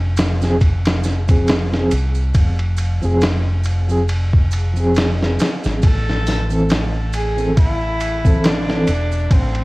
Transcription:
0.00 1.88 F1 medium
0.17 snare loud
0.17 ride medium
0.17 maracas medium
0.41 0.54 F3 medium
0.41 0.55 C4 medium
0.41 0.56 G#4 loud
0.41 snare soft
0.41 maracas medium
0.61 kick medium
0.61 ride medium
0.61 maracas soft
0.85 snare medium
0.85 ride medium
1.04 snare soft
1.04 maracas medium
1.28 1.66 F3 medium
1.28 1.67 C4 medium
1.28 1.68 G#4 medium
1.28 kick medium
1.28 ride medium
1.28 maracas medium
1.47 snare loud
1.47 ride medium
1.47 maracas soft
1.70 1.91 F3 medium
1.70 1.92 C4 medium
1.70 1.93 G#4 medium
1.70 snare soft
1.91 2.31 C2 medium
1.91 ride medium
1.91 maracas medium
2.15 maracas medium
2.34 2.98 F1 medium
2.34 kick loud
2.34 ride medium
2.34 maracas soft
2.59 ride soft
2.77 ride medium
2.77 maracas medium
3.01 5.36 F1 medium
3.01 3.22 F3 medium
3.01 3.23 C4 medium
3.01 3.24 G#4 loud
3.01 maracas soft
3.21 snare loud
3.21 ride medium
3.21 maracas soft
3.64 ride medium
3.64 maracas medium
3.88 4.02 F3 medium
3.88 4.02 C4 medium
3.88 4.03 G#4 loud
3.88 maracas soft
4.08 ride medium
4.08 maracas soft
4.33 kick medium
4.51 ride medium
4.51 maracas medium
4.73 5.79 F3 medium
4.73 5.81 C4 medium
4.73 maracas soft
4.80 5.82 G#4 medium
4.94 snare loud
4.94 ride medium
4.94 maracas soft
5.22 snare soft
5.39 snare medium
5.39 ride medium
5.39 maracas medium
5.64 5.81 G#1 medium
5.64 snare soft
5.64 maracas medium
5.82 8.84 A1 medium
5.82 6.67 A4 loud
5.82 kick loud
5.82 ride medium
5.82 maracas soft
6.10 snare soft
6.27 snare soft
6.27 open hi-hat medium
6.27 maracas medium
6.49 6.70 E3 medium
6.49 6.71 C4 medium
6.49 6.72 A4 medium
6.49 maracas medium
6.69 snare loud
6.69 ride medium
6.69 maracas soft
7.13 7.55 G#4 loud
7.13 ride medium
7.13 maracas medium
7.37 7.50 E3 medium
7.37 7.51 C4 medium
7.37 7.51 A4 loud
7.37 maracas soft
7.57 8.47 E4 loud
7.57 kick loud
7.57 ride medium
7.57 maracas soft
8.00 ride medium
8.00 maracas medium
8.23 8.62 E3 medium
8.23 8.63 C4 medium
8.23 8.63 A4 medium
8.23 kick medium
8.23 maracas medium
8.44 9.35 D4 loud
8.44 snare loud
8.44 ride medium
8.44 maracas soft
8.67 8.88 E3 medium
8.67 8.88 C4 medium
8.67 8.89 A4 medium
8.67 snare soft
8.87 9.27 E1 medium
8.87 ride medium
8.87 maracas medium
9.12 maracas soft
9.31 9.64 A1 medium
9.31 9.64 C4 medium
9.31 kick loud
9.31 ride medium
9.31 maracas soft
9.55 ride soft

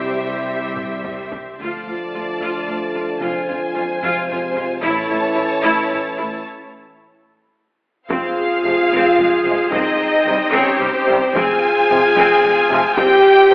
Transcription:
0.00 1.36 C2 medium
0.00 1.28 C3 medium
0.00 1.28 G3 medium
0.00 1.30 G3 soft
0.00 1.60 C4 medium
0.00 1.32 E4 medium
0.00 1.36 G4 soft
0.00 1.60 G4 medium
0.00 1.36 C5 medium
0.00 1.60 C5 medium
0.00 1.30 E5 medium
0.00 1.36 E5 soft
0.00 1.61 E5 medium
0.77 taiko mid medium
1.04 taiko low-mid medium
1.32 taiko low medium
1.59 1.85 D2 soft
1.59 1.68 D2 soft
1.59 3.98 D3 soft
1.59 4.78 F3 soft
1.59 3.18 A3 soft
1.59 1.86 F4 soft
1.59 3.18 A4 soft
1.59 3.17 D5 soft
1.59 3.18 A5 soft
1.59 taiko soft
1.87 1.95 D2 soft
1.87 1.96 F4 soft
2.14 2.24 D2 soft
2.14 2.22 F4 soft
2.41 2.49 D2 soft
2.41 2.66 F4 soft
2.67 2.76 D2 soft
2.67 2.75 F4 soft
2.81 taiko soft
2.95 3.03 D2 soft
2.95 3.03 F4 soft
3.21 3.46 F1 soft
3.21 3.29 F2 soft
3.21 4.82 G#3 medium
3.21 4.83 F4 soft
3.21 3.47 F4 soft
3.21 4.79 C5 soft
3.21 4.82 G#5 soft
3.49 3.57 F2 soft
3.49 3.57 F4 soft
3.75 3.84 F2 soft
3.75 3.83 F4 soft
4.02 4.10 F2 medium
4.02 4.83 C3 soft
4.02 4.28 F4 medium
4.31 4.39 F2 soft
4.31 4.39 F4 soft
4.55 4.65 F2 soft
4.55 4.63 F4 medium
4.80 5.07 A1 medium
4.80 6.41 A2 medium
4.80 4.91 A2 medium
4.80 6.42 E3 medium
4.80 6.41 A3 medium
4.80 6.40 C#4 medium
4.80 5.07 E4 medium
4.80 6.42 A5 medium
4.80 taiko medium
4.84 6.46 C#5 medium
5.09 5.20 A2 medium
5.09 5.17 E4 soft
5.34 5.45 A2 soft
5.34 5.42 E4 soft
5.62 5.72 A2 medium
5.62 5.88 E4 medium
5.90 6.00 A2 medium
5.90 5.98 E4 soft
6.17 6.29 A2 soft
6.17 6.25 E4 medium
8.09 8.18 F1 medium
8.09 8.19 F2 medium
8.09 13.54 C4 medium
8.09 8.36 C4 medium
8.09 9.69 F4 loud
8.09 10.49 G#4 medium
8.09 9.69 G#4 medium
8.09 13.54 C5 medium
8.09 9.68 F5 medium
8.09 9.69 F5 medium
8.09 9.70 F5 medium
8.09 taiko medium
8.64 8.72 F1 soft
8.64 8.74 F2 soft
8.64 8.74 C3 medium
8.64 8.74 F3 soft
8.64 8.74 G#3 medium
8.91 8.99 F1 medium
8.91 9.01 F2 medium
8.91 9.18 C4 medium
9.18 9.26 F1 medium
9.18 9.26 F2 medium
9.18 9.28 G#3 soft
9.18 taiko low-mid soft
9.45 9.53 F1 medium
9.45 9.54 F2 soft
9.45 9.56 C3 medium
9.45 9.54 F3 medium
9.45 9.56 G#3 medium
9.70 9.79 C2 medium
9.70 9.81 C2 medium
9.70 9.98 C4 soft
9.70 10.51 D#4 medium
9.70 11.35 D#4 medium
9.70 10.51 D#5 medium
9.70 10.52 D#5 medium
9.70 11.35 G5 medium
9.70 taiko medium
10.25 10.33 C2 soft
10.25 10.35 C2 soft
10.25 10.37 C3 medium
10.25 10.34 D#3 soft
10.25 10.37 G3 medium
10.51 10.60 C2 medium
10.51 10.62 C2 medium
10.51 10.78 C4 medium
10.51 10.80 C#4 medium
10.51 11.35 G4 medium
10.51 10.80 C#5 medium
10.51 10.81 C#5 medium
10.79 10.87 C2 medium
10.79 10.89 C2 medium
10.79 10.88 G3 medium
10.79 11.35 C4 medium
10.79 11.35 C5 medium
10.79 11.36 C5 medium
10.79 taiko low-mid medium
11.07 11.15 C2 medium
11.07 11.17 C2 medium
11.07 11.17 C3 medium
11.07 11.16 D#3 medium
11.07 11.18 G3 medium
11.35 11.43 F1 medium
11.35 11.43 F2 medium
11.35 11.61 C4 medium
11.35 13.54 F4 medium
11.35 12.98 F4 medium
11.35 12.95 G#4 loud
11.35 12.99 F5 medium
11.35 12.94 G#5 medium
11.35 12.94 G#5 loud
11.35 taiko medium
11.89 11.98 F1 medium
11.89 11.97 F2 medium
11.89 12.00 C3 medium
11.89 11.99 F3 medium
11.89 11.98 F3 medium
12.16 12.24 F1 medium
12.16 12.24 F2 medium
12.16 12.42 C4 medium
12.43 12.51 F1 medium
12.43 12.51 F2 medium
12.43 12.52 G#3 medium
12.43 taiko low-mid medium
12.70 12.78 F1 medium
12.70 12.78 F2 medium
12.70 12.79 C3 medium
12.70 12.80 F3 medium
12.97 13.05 C2 medium
12.97 13.06 C2 medium
12.97 13.22 C4 medium
12.97 13.54 G4 loud
12.97 13.54 G4 medium
12.97 13.54 D#5 medium
12.97 13.54 G5 loud
12.97 taiko loud
13.51 13.54 C2 medium
13.51 13.54 C3 medium
13.51 13.54 D#3 medium

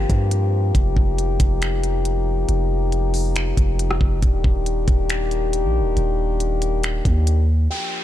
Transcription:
0.00 4.19 F3 medium
0.00 4.19 A#3 medium
0.00 0.71 C4 medium
0.00 4.19 G4 medium
0.10 0.72 G2 loud
0.10 kick medium
0.10 closed hi-hat medium
0.31 closed hi-hat medium
0.75 0.96 F1 loud
0.75 4.19 D#4 medium
0.75 kick loud
0.75 closed hi-hat medium
0.97 1.38 F1 loud
0.97 kick medium
1.19 closed hi-hat medium
1.40 2.45 F1 loud
1.40 kick loud
1.40 closed hi-hat medium
1.62 finger snap loud
1.62 closed hi-hat medium
1.84 closed hi-hat medium
2.05 closed hi-hat medium
2.49 3.53 F1 loud
2.49 closed hi-hat medium
2.92 closed hi-hat medium
3.14 open hi-hat medium
3.36 finger snap loud
3.36 closed hi-hat medium
3.57 3.99 F1 loud
3.57 kick medium
3.57 closed hi-hat medium
3.79 closed hi-hat medium
3.91 cross-stick loud
4.01 4.22 F1 loud
4.01 kick medium
4.22 4.43 D#1 loud
4.22 7.53 D#3 medium
4.22 7.53 A#3 medium
4.22 7.53 D4 medium
4.22 7.53 G4 medium
4.22 kick loud
4.22 closed hi-hat medium
4.44 4.86 D#1 loud
4.44 kick loud
4.66 closed hi-hat medium
4.88 5.66 D#1 loud
4.88 kick loud
4.88 closed hi-hat medium
5.10 finger snap loud
5.10 closed hi-hat medium
5.31 closed hi-hat medium
5.53 closed hi-hat medium
5.64 5.82 A#1 loud
5.80 5.96 D#1 loud
5.97 7.01 D#1 loud
5.97 closed hi-hat medium
6.40 closed hi-hat medium
6.62 closed hi-hat medium
6.84 finger snap loud
6.84 closed hi-hat medium
7.05 7.68 D#2 loud
7.05 kick medium
7.05 closed hi-hat medium
7.27 closed hi-hat medium
7.70 8.04 F3 medium
7.70 8.04 A#3 medium
7.70 8.04 D4 medium
7.70 8.04 G4 medium
7.70 8.04 G5 medium
7.70 downlifter medium

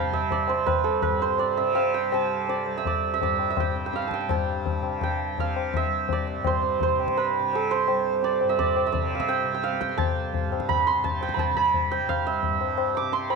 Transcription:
0.00 0.53 C2 medium
0.00 1.07 G2 medium
0.00 1.60 C3 medium
0.00 0.19 F5 medium
0.00 1.82 G5 medium
0.00 1.52 A5 medium
0.00 0.55 B5 medium
0.13 1.57 E5 medium
0.13 tabla ge medium
0.30 1.39 D5 medium
0.30 tabla tin medium
0.30 tabla ge medium
0.48 0.72 C5 medium
0.48 tabla na medium
0.54 2.66 C2 medium
0.66 1.02 B4 medium
0.66 tabla na medium
0.66 tabla ge medium
0.84 3.78 A4 medium
1.02 1.28 B4 medium
1.02 tabla tin medium
1.02 tabla ge medium
1.07 3.18 G2 medium
1.20 3.86 C5 medium
1.20 tabla na medium
1.38 2.49 D5 medium
1.38 tabla na medium
1.57 2.12 C3 medium
1.57 1.81 E5 medium
1.75 2.83 F5 medium
1.75 tabla na medium
1.94 3.60 G5 medium
2.12 3.70 C3 medium
2.12 4.07 A5 medium
2.12 tabla na medium
2.49 2.87 D5 medium
2.49 tabla tin medium
2.66 5.86 C2 medium
2.66 tabla na medium
2.77 3.13 E5 medium
2.85 3.22 D5 medium
2.85 tabla tin medium
2.85 tabla ge medium
3.14 3.50 E5 medium
3.18 4.28 G2 medium
3.18 tabla tin medium
3.18 tabla ge medium
3.23 5.69 D5 medium
3.39 tabla na medium
3.50 4.02 E5 medium
3.57 3.86 G5 medium
3.57 tabla na medium
3.57 tabla ge medium
3.70 4.81 C3 soft
3.76 tabla te medium
3.86 4.13 G5 medium
3.94 5.40 F5 medium
3.94 tabla te medium
4.02 tabla te medium
4.07 4.30 A5 medium
4.07 tabla ke medium
4.14 5.03 G5 medium
4.21 tabla te medium
4.28 6.37 G2 medium
4.28 6.25 A5 medium
4.28 tabla na loud
4.28 tabla ge medium
4.66 tabla tin medium
4.66 tabla ge medium
4.81 5.33 C3 medium
4.81 tabla na soft
5.01 7.10 G5 medium
5.01 tabla na medium
5.01 tabla ge medium
5.33 6.88 C3 medium
5.38 5.83 F5 medium
5.38 tabla tin medium
5.38 tabla ge medium
5.56 tabla na medium
5.74 8.07 E5 medium
5.74 tabla na medium
5.74 tabla ge medium
5.86 7.90 C2 medium
6.09 8.24 D5 medium
6.09 tabla tin medium
6.09 tabla ge medium
6.28 tabla na medium
6.37 8.41 G2 medium
6.44 6.82 C5 medium
6.44 tabla na medium
6.44 tabla ge medium
6.63 tabla te medium
6.81 7.23 C5 medium
6.81 tabla tin medium
6.81 tabla ge medium
6.88 7.39 C3 medium
7.00 tabla na medium
7.08 tabla ke medium
7.17 7.77 B4 medium
7.17 tabla na medium
7.39 8.92 C3 medium
7.53 10.50 A4 medium
7.53 tabla na medium
7.71 10.35 C5 medium
7.88 9.93 C2 medium
7.88 tabla na medium
8.23 8.58 D5 medium
8.23 tabla tin medium
8.41 10.46 G2 medium
8.41 tabla na medium
8.49 8.86 E5 medium
8.59 8.92 D5 medium
8.59 tabla tin medium
8.59 tabla ge medium
8.77 tabla na medium
8.86 9.19 E5 medium
8.92 9.44 C3 medium
8.92 11.38 D5 medium
8.92 tabla tin medium
8.92 tabla ge medium
9.11 9.26 F5 medium
9.11 tabla na medium
9.20 9.69 E5 medium
9.20 tabla ke medium
9.29 9.54 G5 medium
9.29 tabla na medium
9.44 10.97 C3 medium
9.54 9.80 G5 medium
9.63 11.86 F5 medium
9.63 tabla te medium
9.73 tabla te medium
9.81 11.22 G5 medium
9.81 tabla ke medium
9.89 tabla te medium
9.93 11.98 C2 medium
9.98 11.04 A5 loud
9.98 tabla na loud
9.98 tabla ge medium
10.34 tabla tin medium
10.34 tabla ge medium
10.46 12.48 G2 medium
10.52 tabla na medium
10.60 tabla ke medium
10.69 10.93 B5 medium
10.69 tabla na medium
10.69 tabla ge medium
10.87 11.40 C6 medium
10.97 11.48 C3 medium
11.04 11.39 A5 loud
11.04 tabla tin medium
11.04 tabla ge medium
11.21 11.91 G5 medium
11.21 tabla na medium
11.29 tabla ke medium
11.34 11.56 B5 medium
11.34 tabla na medium
11.34 tabla ge medium
11.39 13.33 A5 medium
11.48 13.00 C3 medium
11.55 13.19 B5 loud
11.55 tabla ge medium
11.74 tabla tin medium
11.74 tabla ge medium
11.91 13.36 G5 medium
11.91 tabla na medium
11.98 13.36 C2 medium
12.09 12.33 F5 medium
12.09 tabla na medium
12.09 tabla ge medium
12.27 13.36 E5 medium
12.43 tabla tin medium
12.43 tabla ge medium
12.48 13.36 G2 medium
12.61 tabla na medium
12.78 tabla na medium
12.95 13.36 D6 loud
12.95 tabla na medium
13.00 13.36 C3 medium
13.13 13.36 C6 medium
13.13 tabla te medium
13.30 13.36 B5 medium
13.30 tabla na medium

